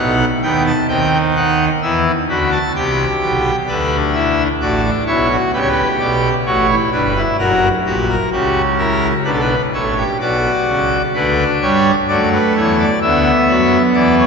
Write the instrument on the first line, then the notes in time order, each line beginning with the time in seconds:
pipe organ
Already playing: B1 B2 D#4 F#5
0.42 D#2 D#3 B3 G5
0.67 A5
0.88 D#2 D#3 C4 G5
1.36 D#4 F#5
1.82 E2 E3 E4 E5
2.29 D2 D3 F#4 B5
2.52 A5
2.75 C2 C3 G4 G5
3.22 B1 B2
3.67 D2 D3 D4 B4
4.13 E4 E5
4.61 A1 A2 F#4 D5
4.83 D4
5.07 B1 B2 E4 C#5
5.31 F#4
5.53 C#2 C#3 G4 B4
5.61 C#5
5.67 B4
5.99 B1 B2 D5
6.46 A1 A2 F#4 C#5
6.69 E4
6.92 G1 G2 D4 B4
7.16 E4
7.39 F#1 F#2 F#4 A#4
7.86 A#1 A#2 F#4 G4
8.09 A#4
8.32 C#2 C#3 F#4 G4
8.78 E4 A#4
9.25 B1 B2 D4 B4
9.33 A4
9.41 B4
9.74 A1 A2 A4 C#5
9.97 G4
10.20 B1 B2 F#4 D5
10.67 C#2 C#3
11.14 D2 D3 D4 B4
11.62 G2 G3 C#5
12.08 F#2 F#3 A3 D5
12.33 B4
12.56 E2 E3 C#5
12.79 D5
13.02 D2 D3 B3 E5
13.48 F#2 F#3
13.94 E2 E3 D5
14.19 C#5